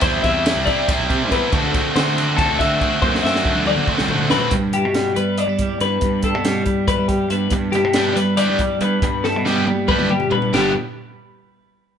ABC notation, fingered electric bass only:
X:1
M:7/8
L:1/16
Q:1/4=140
K:G
V:1 name="Fingered electric bass" clef=bass
E,,2 E,,3 C,,2 z2 B,,, C,2 E,, z | D,,2 z2 D,4- D, D,, D,2 z2 | F,,2 F,,3 D,,2 z2 C,, D,2 F,, z | G,,3 B,,3 G,3 G,2 z G,,2 |
G,,3 B,,3 G,3 G,2 z G,,2 | G,,3 B,,3 G,3 G,2 z G,,2 | G,,3 B,,3 G,3 G,2 z G,,2 | G,,,2 z12 |]